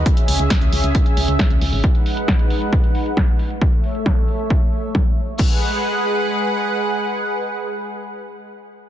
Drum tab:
CC |----------------|----------------|----------------|x---------------|
HH |xxoxxxoxxxoxxxoo|xxoxxxoxxxoxxxox|-xox-xox--ox--oo|----------------|
SD |----o-------o---|----o-------o---|----o-------o---|----------------|
BD |o---o---o---o---|o---o---o---o---|o---o---o---o---|o---------------|

CC |----------------|
HH |----------------|
SD |----------------|
BD |----------------|